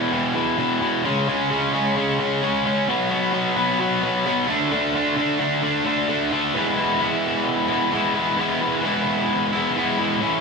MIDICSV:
0, 0, Header, 1, 2, 480
1, 0, Start_track
1, 0, Tempo, 458716
1, 1095, Time_signature, 4, 2, 24, 8
1, 10889, End_track
2, 0, Start_track
2, 0, Title_t, "Overdriven electric guitar"
2, 0, Program_c, 0, 29
2, 0, Note_on_c, 0, 40, 82
2, 0, Note_on_c, 0, 47, 85
2, 0, Note_on_c, 0, 52, 90
2, 113, Note_off_c, 0, 40, 0
2, 122, Note_off_c, 0, 47, 0
2, 125, Note_off_c, 0, 52, 0
2, 126, Note_on_c, 0, 40, 80
2, 135, Note_on_c, 0, 47, 90
2, 137, Note_on_c, 0, 52, 102
2, 351, Note_off_c, 0, 40, 0
2, 363, Note_off_c, 0, 47, 0
2, 364, Note_on_c, 0, 40, 76
2, 367, Note_off_c, 0, 52, 0
2, 375, Note_on_c, 0, 47, 86
2, 380, Note_on_c, 0, 52, 96
2, 593, Note_off_c, 0, 40, 0
2, 600, Note_off_c, 0, 47, 0
2, 606, Note_off_c, 0, 52, 0
2, 606, Note_on_c, 0, 40, 87
2, 613, Note_on_c, 0, 47, 86
2, 618, Note_on_c, 0, 52, 91
2, 833, Note_off_c, 0, 40, 0
2, 846, Note_on_c, 0, 40, 69
2, 847, Note_off_c, 0, 47, 0
2, 851, Note_off_c, 0, 52, 0
2, 860, Note_on_c, 0, 47, 87
2, 864, Note_on_c, 0, 52, 84
2, 1076, Note_off_c, 0, 40, 0
2, 1083, Note_off_c, 0, 47, 0
2, 1085, Note_off_c, 0, 52, 0
2, 1096, Note_on_c, 0, 49, 96
2, 1102, Note_on_c, 0, 56, 98
2, 1109, Note_on_c, 0, 61, 96
2, 1325, Note_off_c, 0, 49, 0
2, 1332, Note_off_c, 0, 56, 0
2, 1336, Note_off_c, 0, 61, 0
2, 1337, Note_on_c, 0, 49, 81
2, 1345, Note_on_c, 0, 56, 88
2, 1349, Note_on_c, 0, 61, 93
2, 1557, Note_off_c, 0, 49, 0
2, 1567, Note_off_c, 0, 56, 0
2, 1569, Note_on_c, 0, 49, 95
2, 1571, Note_off_c, 0, 61, 0
2, 1579, Note_on_c, 0, 56, 86
2, 1583, Note_on_c, 0, 61, 90
2, 1801, Note_off_c, 0, 49, 0
2, 1807, Note_off_c, 0, 56, 0
2, 1813, Note_on_c, 0, 49, 96
2, 1815, Note_off_c, 0, 61, 0
2, 1819, Note_on_c, 0, 56, 86
2, 1827, Note_on_c, 0, 61, 89
2, 2037, Note_off_c, 0, 49, 0
2, 2044, Note_off_c, 0, 56, 0
2, 2049, Note_on_c, 0, 49, 92
2, 2052, Note_off_c, 0, 61, 0
2, 2057, Note_on_c, 0, 56, 94
2, 2065, Note_on_c, 0, 61, 84
2, 2278, Note_off_c, 0, 49, 0
2, 2281, Note_off_c, 0, 56, 0
2, 2288, Note_off_c, 0, 61, 0
2, 2291, Note_on_c, 0, 49, 93
2, 2294, Note_on_c, 0, 56, 93
2, 2301, Note_on_c, 0, 61, 100
2, 2524, Note_off_c, 0, 49, 0
2, 2530, Note_off_c, 0, 56, 0
2, 2536, Note_on_c, 0, 49, 79
2, 2538, Note_off_c, 0, 61, 0
2, 2543, Note_on_c, 0, 56, 89
2, 2550, Note_on_c, 0, 61, 94
2, 2763, Note_off_c, 0, 49, 0
2, 2776, Note_on_c, 0, 49, 70
2, 2777, Note_off_c, 0, 56, 0
2, 2777, Note_off_c, 0, 61, 0
2, 2789, Note_on_c, 0, 61, 81
2, 2790, Note_on_c, 0, 56, 74
2, 3000, Note_off_c, 0, 49, 0
2, 3007, Note_off_c, 0, 56, 0
2, 3007, Note_off_c, 0, 61, 0
2, 3019, Note_on_c, 0, 47, 101
2, 3024, Note_on_c, 0, 54, 99
2, 3037, Note_on_c, 0, 59, 98
2, 3235, Note_off_c, 0, 47, 0
2, 3247, Note_off_c, 0, 59, 0
2, 3248, Note_on_c, 0, 47, 90
2, 3254, Note_off_c, 0, 54, 0
2, 3258, Note_on_c, 0, 54, 87
2, 3259, Note_on_c, 0, 59, 92
2, 3466, Note_off_c, 0, 47, 0
2, 3479, Note_on_c, 0, 47, 82
2, 3485, Note_off_c, 0, 59, 0
2, 3488, Note_off_c, 0, 54, 0
2, 3493, Note_on_c, 0, 54, 96
2, 3498, Note_on_c, 0, 59, 98
2, 3715, Note_off_c, 0, 47, 0
2, 3727, Note_off_c, 0, 54, 0
2, 3728, Note_off_c, 0, 59, 0
2, 3728, Note_on_c, 0, 47, 94
2, 3732, Note_on_c, 0, 54, 90
2, 3741, Note_on_c, 0, 59, 108
2, 3955, Note_off_c, 0, 47, 0
2, 3964, Note_off_c, 0, 54, 0
2, 3968, Note_on_c, 0, 47, 94
2, 3969, Note_off_c, 0, 59, 0
2, 3977, Note_on_c, 0, 54, 90
2, 3982, Note_on_c, 0, 59, 94
2, 4193, Note_off_c, 0, 47, 0
2, 4199, Note_off_c, 0, 54, 0
2, 4205, Note_on_c, 0, 47, 93
2, 4208, Note_off_c, 0, 59, 0
2, 4211, Note_on_c, 0, 54, 87
2, 4220, Note_on_c, 0, 59, 101
2, 4443, Note_off_c, 0, 47, 0
2, 4453, Note_off_c, 0, 54, 0
2, 4455, Note_on_c, 0, 47, 89
2, 4456, Note_off_c, 0, 59, 0
2, 4465, Note_on_c, 0, 54, 98
2, 4469, Note_on_c, 0, 59, 87
2, 4680, Note_off_c, 0, 47, 0
2, 4685, Note_off_c, 0, 54, 0
2, 4687, Note_off_c, 0, 59, 0
2, 4687, Note_on_c, 0, 50, 82
2, 4695, Note_on_c, 0, 57, 80
2, 4706, Note_on_c, 0, 62, 100
2, 4914, Note_off_c, 0, 50, 0
2, 4925, Note_off_c, 0, 57, 0
2, 4927, Note_on_c, 0, 50, 102
2, 4933, Note_off_c, 0, 62, 0
2, 4938, Note_on_c, 0, 57, 107
2, 4946, Note_on_c, 0, 62, 109
2, 5161, Note_off_c, 0, 50, 0
2, 5174, Note_on_c, 0, 50, 94
2, 5176, Note_off_c, 0, 57, 0
2, 5178, Note_off_c, 0, 62, 0
2, 5189, Note_on_c, 0, 57, 79
2, 5191, Note_on_c, 0, 62, 95
2, 5396, Note_off_c, 0, 50, 0
2, 5407, Note_off_c, 0, 57, 0
2, 5409, Note_on_c, 0, 50, 84
2, 5414, Note_off_c, 0, 62, 0
2, 5419, Note_on_c, 0, 57, 90
2, 5427, Note_on_c, 0, 62, 94
2, 5633, Note_off_c, 0, 50, 0
2, 5645, Note_off_c, 0, 57, 0
2, 5646, Note_on_c, 0, 50, 97
2, 5653, Note_off_c, 0, 62, 0
2, 5658, Note_on_c, 0, 57, 91
2, 5666, Note_on_c, 0, 62, 108
2, 5878, Note_off_c, 0, 50, 0
2, 5883, Note_off_c, 0, 57, 0
2, 5888, Note_off_c, 0, 62, 0
2, 5890, Note_on_c, 0, 50, 86
2, 5895, Note_on_c, 0, 57, 80
2, 5901, Note_on_c, 0, 62, 101
2, 6115, Note_off_c, 0, 50, 0
2, 6126, Note_off_c, 0, 57, 0
2, 6128, Note_on_c, 0, 50, 87
2, 6132, Note_off_c, 0, 62, 0
2, 6138, Note_on_c, 0, 57, 93
2, 6145, Note_on_c, 0, 62, 90
2, 6356, Note_off_c, 0, 50, 0
2, 6363, Note_off_c, 0, 57, 0
2, 6369, Note_on_c, 0, 50, 76
2, 6375, Note_off_c, 0, 62, 0
2, 6376, Note_on_c, 0, 57, 86
2, 6387, Note_on_c, 0, 62, 98
2, 6594, Note_off_c, 0, 50, 0
2, 6603, Note_off_c, 0, 57, 0
2, 6607, Note_on_c, 0, 50, 77
2, 6611, Note_off_c, 0, 62, 0
2, 6615, Note_on_c, 0, 57, 85
2, 6624, Note_on_c, 0, 62, 81
2, 6836, Note_off_c, 0, 50, 0
2, 6840, Note_off_c, 0, 57, 0
2, 6844, Note_off_c, 0, 62, 0
2, 6849, Note_on_c, 0, 52, 102
2, 6864, Note_on_c, 0, 56, 94
2, 6875, Note_on_c, 0, 59, 98
2, 6881, Note_on_c, 0, 64, 98
2, 7089, Note_off_c, 0, 64, 0
2, 7093, Note_on_c, 0, 64, 71
2, 7106, Note_off_c, 0, 59, 0
2, 7110, Note_on_c, 0, 59, 71
2, 7116, Note_off_c, 0, 56, 0
2, 7120, Note_on_c, 0, 56, 59
2, 7323, Note_off_c, 0, 52, 0
2, 7327, Note_on_c, 0, 52, 100
2, 7328, Note_off_c, 0, 56, 0
2, 7332, Note_on_c, 0, 56, 88
2, 7340, Note_off_c, 0, 59, 0
2, 7344, Note_on_c, 0, 59, 109
2, 7347, Note_off_c, 0, 64, 0
2, 7351, Note_on_c, 0, 64, 111
2, 8034, Note_off_c, 0, 64, 0
2, 8038, Note_on_c, 0, 64, 80
2, 8040, Note_off_c, 0, 59, 0
2, 8053, Note_on_c, 0, 59, 69
2, 8060, Note_off_c, 0, 56, 0
2, 8073, Note_on_c, 0, 56, 64
2, 8279, Note_off_c, 0, 52, 0
2, 8284, Note_on_c, 0, 52, 79
2, 8285, Note_off_c, 0, 56, 0
2, 8297, Note_off_c, 0, 59, 0
2, 8297, Note_on_c, 0, 56, 75
2, 8310, Note_off_c, 0, 64, 0
2, 8310, Note_on_c, 0, 59, 85
2, 8315, Note_on_c, 0, 64, 84
2, 8516, Note_off_c, 0, 64, 0
2, 8520, Note_on_c, 0, 64, 68
2, 8525, Note_off_c, 0, 59, 0
2, 8537, Note_on_c, 0, 59, 54
2, 8544, Note_off_c, 0, 56, 0
2, 8556, Note_on_c, 0, 56, 53
2, 8754, Note_off_c, 0, 52, 0
2, 8758, Note_on_c, 0, 52, 100
2, 8766, Note_off_c, 0, 56, 0
2, 8774, Note_off_c, 0, 59, 0
2, 8778, Note_on_c, 0, 56, 96
2, 8786, Note_on_c, 0, 59, 111
2, 8791, Note_off_c, 0, 64, 0
2, 8796, Note_on_c, 0, 64, 110
2, 9004, Note_off_c, 0, 64, 0
2, 9008, Note_on_c, 0, 64, 69
2, 9014, Note_off_c, 0, 59, 0
2, 9027, Note_on_c, 0, 59, 77
2, 9034, Note_off_c, 0, 56, 0
2, 9047, Note_on_c, 0, 56, 62
2, 9235, Note_off_c, 0, 52, 0
2, 9239, Note_on_c, 0, 52, 99
2, 9245, Note_off_c, 0, 56, 0
2, 9256, Note_off_c, 0, 59, 0
2, 9258, Note_on_c, 0, 56, 106
2, 9268, Note_on_c, 0, 59, 105
2, 9274, Note_off_c, 0, 64, 0
2, 9278, Note_on_c, 0, 64, 111
2, 9961, Note_off_c, 0, 64, 0
2, 9966, Note_on_c, 0, 64, 81
2, 9977, Note_off_c, 0, 59, 0
2, 9988, Note_off_c, 0, 56, 0
2, 9989, Note_on_c, 0, 59, 69
2, 10000, Note_on_c, 0, 56, 61
2, 10209, Note_off_c, 0, 52, 0
2, 10211, Note_off_c, 0, 56, 0
2, 10213, Note_on_c, 0, 52, 71
2, 10223, Note_on_c, 0, 56, 92
2, 10224, Note_off_c, 0, 59, 0
2, 10237, Note_on_c, 0, 59, 82
2, 10242, Note_off_c, 0, 64, 0
2, 10246, Note_on_c, 0, 64, 92
2, 10444, Note_off_c, 0, 64, 0
2, 10449, Note_on_c, 0, 64, 65
2, 10457, Note_off_c, 0, 59, 0
2, 10469, Note_off_c, 0, 56, 0
2, 10469, Note_on_c, 0, 59, 60
2, 10481, Note_on_c, 0, 56, 63
2, 10674, Note_on_c, 0, 45, 93
2, 10682, Note_off_c, 0, 52, 0
2, 10686, Note_off_c, 0, 59, 0
2, 10686, Note_on_c, 0, 52, 115
2, 10692, Note_off_c, 0, 56, 0
2, 10696, Note_on_c, 0, 57, 102
2, 10702, Note_on_c, 0, 61, 117
2, 10705, Note_off_c, 0, 64, 0
2, 10709, Note_on_c, 0, 64, 114
2, 10889, Note_off_c, 0, 45, 0
2, 10889, Note_off_c, 0, 52, 0
2, 10889, Note_off_c, 0, 57, 0
2, 10889, Note_off_c, 0, 61, 0
2, 10889, Note_off_c, 0, 64, 0
2, 10889, End_track
0, 0, End_of_file